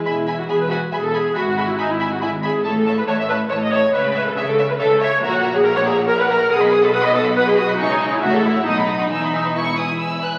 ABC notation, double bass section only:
X:1
M:3/4
L:1/8
Q:1/4=139
K:E
V:1 name="Double bass section" clef=bass
E,,,2 E,,,2 E,,,2 | G,,,2 G,,,2 G,,,2 | A,,,2 A,,,2 A,,,2 | C,,2 C,,2 C,,2 |
^A,,,6 | B,,,6 | C,,2 A,,,2 B,,,2 | E,,,4- E,,, z |]